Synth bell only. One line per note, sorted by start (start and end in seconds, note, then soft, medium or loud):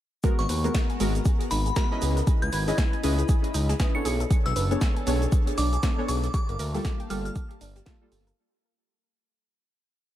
0.39 0.58 C#6 medium
1.51 1.74 B5 medium
1.76 1.98 B5 medium
2.42 2.93 G#6 medium
3.95 4.11 C#7 medium
4.46 4.65 E6 medium
5.58 5.81 D6 medium
6.08 6.30 D6 medium
6.34 6.55 D6 medium
7.10 7.20 F6 medium
7.25 7.32 F6 medium